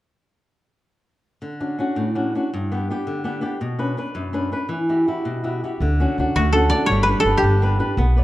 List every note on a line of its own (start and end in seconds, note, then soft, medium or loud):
1.42 1.77 D3 soft
1.60 1.77 C#4 soft
1.60 1.78 D4 soft
1.60 1.79 F#4 soft
1.79 2.08 C#4 soft
1.79 2.09 D4 soft
1.79 2.09 F#4 soft
1.96 2.32 A2 soft
2.15 2.34 C#4 soft
2.15 2.34 D4 soft
2.15 2.35 F#4 soft
2.35 2.49 C#4 soft
2.35 2.49 D4 soft
2.35 2.50 F#4 soft
2.54 2.88 G2 medium
2.72 2.89 B3 soft
2.72 2.90 D4 soft
2.72 2.90 G4 soft
2.90 3.19 B3 soft
2.90 3.19 D4 soft
2.90 3.19 G4 soft
3.07 3.42 D3 soft
3.24 3.40 B3 soft
3.24 3.41 D4 soft
3.24 3.41 G4 soft
3.41 3.56 B3 soft
3.41 3.57 D4 soft
3.41 3.57 G4 soft
3.61 3.96 B2 medium
3.78 3.96 C#4 soft
3.78 3.97 D4 soft
3.78 3.97 B4 soft
3.97 4.26 C#4 soft
3.97 4.26 D4 soft
3.97 4.26 B4 soft
4.15 4.50 F#2 medium
4.33 4.51 C#4 soft
4.33 4.51 D4 soft
4.33 4.51 B4 soft
4.52 4.66 C#4 soft
4.52 4.66 D4 soft
4.52 4.66 B4 soft
4.69 5.05 E3 medium
4.89 5.07 E4 soft
4.89 5.06 F#4 soft
4.89 5.07 G4 soft
5.07 5.37 E4 soft
5.07 5.37 F#4 soft
5.07 5.37 G4 soft
5.25 5.61 B2 soft
5.44 5.62 E4 soft
5.44 5.62 F#4 soft
5.44 5.64 G4 soft
5.64 5.78 E4 soft
5.64 5.78 F#4 soft
5.64 5.79 G4 soft
5.80 6.04 D2 medium
5.80 6.17 D3 medium
6.00 6.18 C#4 soft
6.00 6.18 D4 soft
6.00 6.18 F#4 soft
6.18 6.29 D2 medium
6.18 6.48 C#4 soft
6.18 6.48 D4 soft
6.18 6.48 F#4 soft
6.36 6.71 D2 medium
6.36 6.72 A3 medium
6.36 7.43 F#4 medium
6.53 6.72 C#4 soft
6.53 6.71 D4 soft
6.53 6.73 F#4 soft
6.53 7.20 A4 medium
6.70 6.87 C#4 soft
6.70 6.87 D4 soft
6.70 6.92 D5 medium
6.74 6.88 F#4 soft
6.86 7.12 G1 medium
6.86 8.24 C#5 medium
6.91 7.25 G3 medium
7.03 8.24 B4 medium
7.09 7.25 D4 soft
7.09 7.25 G4 soft
7.09 7.25 B4 soft
7.20 8.24 A4 medium
7.25 7.37 G1 medium
7.25 7.55 D4 soft
7.25 7.55 G4 soft
7.25 7.55 B4 soft
7.37 8.24 G4 medium
7.42 7.78 G1 medium
7.42 7.79 D3 medium
7.62 7.78 D4 soft
7.62 7.78 G4 soft
7.62 7.79 B4 soft
7.79 7.94 D4 soft
7.79 7.94 G4 soft
7.79 7.94 B4 soft
7.97 8.21 B1 medium
7.97 8.24 B3 medium
8.16 8.24 B4 soft
8.16 8.24 C#5 soft
8.16 8.24 D5 soft